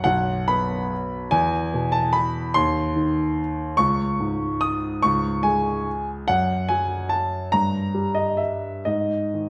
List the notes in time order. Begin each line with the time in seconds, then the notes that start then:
Already playing: F#2
0.04 B1 F#5
0.48 B3 B5
1.31 E2 G#5
1.74 B2
1.92 A5
2.13 B5
2.54 D#2 C6
2.96 D#3
3.77 C#2 C#6
4.20 G#2
4.61 D#6
5.02 C#2 C#6
5.43 G#3 G#5
6.28 F#2 F#5
6.69 F#3 G#5
7.09 A5
7.52 G2 A#5
7.94 G3
8.15 D#5
8.37 E5
8.85 G#2 D#5
9.34 D#3